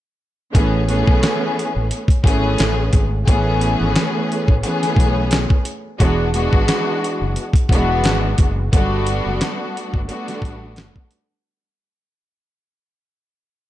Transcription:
0.53 1.02 A1 loud
0.53 0.85 E3 loud
0.53 0.85 A3 medium
0.53 0.86 B3 medium
0.53 0.86 C#4 medium
0.53 0.86 G#4 loud
0.53 kick loud
0.53 closed hi-hat medium
0.88 1.99 E3 loud
0.88 1.99 A3 loud
0.88 1.99 B3 loud
0.88 1.99 C#4 loud
0.88 1.99 G#4 loud
0.88 closed hi-hat medium
1.07 1.21 B1 medium
1.07 kick loud
1.23 snare loud
1.23 clap medium
1.23 closed hi-hat medium
1.59 closed hi-hat medium
1.76 1.90 A1 medium
1.91 closed hi-hat medium
2.08 kick loud
2.08 closed hi-hat medium
2.24 2.55 G#1 medium
2.24 3.04 E3 medium
2.24 3.04 A3 medium
2.24 3.04 B3 medium
2.24 3.04 C#4 medium
2.24 3.04 G#4 loud
2.24 kick medium
2.24 closed hi-hat medium
2.58 2.90 A1 loud
2.58 snare loud
2.58 clap medium
2.58 closed hi-hat medium
2.93 3.24 G#1 medium
2.93 kick medium
2.93 closed hi-hat medium
3.27 3.75 A1 loud
3.27 4.53 E3 loud
3.27 4.54 A3 medium
3.27 4.54 B3 medium
3.27 4.54 C#4 medium
3.27 4.54 G#4 loud
3.27 kick loud
3.27 closed hi-hat medium
3.61 closed hi-hat medium
3.80 3.94 G#1 medium
3.96 snare loud
3.96 clap medium
3.96 closed hi-hat medium
4.32 closed hi-hat medium
4.48 4.62 A1 medium
4.48 kick medium
4.62 5.58 E3 medium
4.62 5.58 A3 medium
4.62 5.58 B3 medium
4.62 5.58 C#4 medium
4.62 5.59 G#4 loud
4.62 closed hi-hat medium
4.83 snare soft
4.83 closed hi-hat medium
4.96 5.44 B1 medium
4.96 kick medium
4.96 closed hi-hat medium
5.31 snare loud
5.31 clap medium
5.31 closed hi-hat medium
5.50 kick loud
5.65 closed hi-hat medium
5.98 6.47 E1 medium
5.98 6.31 E3 loud
5.98 6.31 G#3 medium
5.98 6.31 B3 medium
5.98 6.31 D4 medium
5.98 6.32 F#4 loud
5.98 kick loud
5.98 closed hi-hat medium
6.33 7.44 E3 loud
6.33 7.44 G#3 loud
6.33 7.44 B3 medium
6.33 7.45 D4 medium
6.33 7.45 F#4 loud
6.33 closed hi-hat medium
6.53 6.67 G#1 medium
6.53 kick medium
6.68 snare loud
6.68 clap medium
6.68 closed hi-hat loud
7.04 closed hi-hat medium
7.21 7.35 F#1 medium
7.36 closed hi-hat medium
7.53 kick loud
7.53 closed hi-hat medium
7.69 8.05 E1 medium
7.69 8.50 E3 loud
7.69 8.50 G#3 medium
7.69 8.50 B3 loud
7.69 8.50 D4 medium
7.69 8.51 F#4 loud
7.69 kick loud
7.69 closed hi-hat medium
8.04 8.35 G#1 loud
8.04 snare loud
8.04 clap medium
8.04 closed hi-hat medium
8.38 8.69 F#1 medium
8.38 kick medium
8.38 closed hi-hat medium
8.73 9.20 G1 loud
8.73 9.99 G3 loud
8.73 9.99 A3 medium
8.73 10.00 B3 medium
8.73 10.00 D4 medium
8.73 10.00 F#4 loud
8.73 kick loud
8.73 closed hi-hat medium
9.07 closed hi-hat medium
9.26 9.40 F#1 medium
9.41 snare loud
9.41 clap medium
9.41 closed hi-hat loud
9.77 closed hi-hat medium
9.94 10.08 G1 medium
9.94 kick medium
10.08 11.03 G3 loud
10.08 11.04 A3 medium
10.08 11.04 B3 medium
10.08 11.04 D4 medium
10.08 11.04 F#4 loud
10.08 closed hi-hat medium
10.28 snare soft
10.28 closed hi-hat medium
10.42 10.90 A1 loud
10.42 kick loud
10.42 closed hi-hat medium
10.76 snare loud
10.76 clap medium
10.76 closed hi-hat medium
10.96 kick medium
11.11 closed hi-hat medium

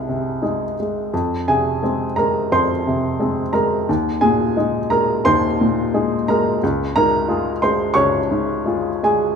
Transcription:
0.00 1.15 C2 medium
0.00 0.09 C3 soft
0.00 0.43 G#3 soft
0.00 0.42 D#4 soft
0.00 0.41 G#4 soft
0.00 1.14 A#4 medium
0.00 0.77 G#5 soft
0.00 1.14 A#5 medium
0.09 0.64 C3 soft
0.42 0.74 G#3 soft
0.42 0.74 D#4 soft
0.42 0.74 G#4 soft
0.80 1.14 G#3 soft
1.14 2.47 F2 soft
1.48 2.03 C3 soft
1.48 1.82 G#4 soft
1.48 2.17 G#5 medium
1.83 2.13 G#3 soft
1.83 2.14 C4 soft
1.83 2.14 G#4 soft
2.16 2.72 G#3 soft
2.16 2.49 A#4 soft
2.16 2.51 A#5 medium
2.52 3.84 F2 soft
2.52 3.50 C5 soft
2.52 3.54 C6 medium
2.87 3.41 C3 soft
3.20 3.50 G#3 soft
3.20 3.51 C4 soft
3.20 3.51 G#4 soft
3.53 3.88 G#3 soft
3.53 3.86 A#4 soft
3.53 3.88 A#5 medium
3.89 5.22 D#2 soft
4.21 4.77 A#2 soft
4.21 4.56 G#4 soft
4.21 4.90 G#5 medium
4.57 4.87 G#3 soft
4.57 4.87 D#4 soft
4.57 4.88 G#4 soft
4.90 5.45 G#3 soft
4.90 5.23 A#4 soft
4.90 5.25 A#5 medium
5.25 6.58 D#2 soft
5.25 6.24 C5 medium
5.25 6.27 C6 medium
5.61 6.15 A#2 soft
5.94 6.25 G#3 soft
5.94 6.24 D#4 soft
5.94 6.25 G#4 soft
6.28 6.62 G#3 soft
6.28 6.61 A#4 medium
6.28 6.62 A#5 medium
6.63 7.93 C#2 medium
6.96 7.50 G#2 soft
6.96 7.59 A#4 medium
6.96 7.63 A#5 medium
7.28 7.59 G#3 soft
7.28 7.59 F4 soft
7.28 7.59 G#4 soft
7.62 8.17 G#3 soft
7.62 7.95 C5 soft
7.62 7.96 C6 medium
7.94 9.36 C#2 soft
7.94 8.99 C#5 medium
7.94 9.02 C#6 medium
8.31 8.89 G#2 soft
8.65 8.99 G#3 soft
8.65 9.00 F4 soft
8.65 9.00 G#4 soft
9.03 9.36 G#3 soft
9.03 9.36 G#4 soft
9.03 9.36 G#5 medium

